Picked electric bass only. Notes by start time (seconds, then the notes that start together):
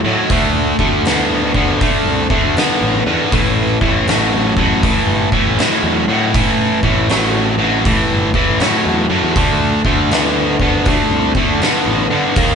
0.04 A2
0.30 D2
0.79 D2
2.06 C2
2.44 D2
2.81 A1
3.06 E2
3.32 A1
3.82 A1
5.07 G1
5.46 A1
5.83 E2
6.08 A2
6.83 A1
8.11 G1
8.48 A1
8.86 E2
9.10 F#2
9.23 E2
9.36 D2
9.84 D2
11.11 C2
11.48 D2
11.86 A1
12.09 D3
12.37 D#2